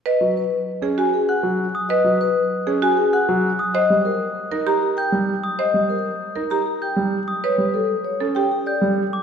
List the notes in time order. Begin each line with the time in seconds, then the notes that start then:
0.06 B4 D#5
0.21 F#3
0.37 B4
0.82 C#4 G#4
0.98 F#4 G#5
1.14 G#4
1.29 F#5 F#6
1.43 F#3
1.75 D#6
1.89 B4 D#5
2.04 F#3
2.21 B4
2.67 C#4 G#4
2.82 F#4 G#5
2.97 G#4
3.13 F#5 F#6
3.29 F#3
3.59 D#6
3.74 C5 D#5
3.90 G3
4.05 A#4
4.51 D#4 A#4
4.67 G4 A#5
4.82 G4
4.97 G5 G6
5.12 G3
5.44 D#6
5.59 C5 D#5
5.74 G3
5.90 A#4
6.36 D#4 A#4
6.50 G4 A#5
6.66 G4
6.82 G5 G6
6.96 G3
7.28 D#6
7.44 B4 C#5
7.58 G3
7.74 A4
8.04 C#5
8.20 C#4 A4
8.35 G4 G5
8.51 G4
8.66 D5 G6
8.82 G3
9.13 D6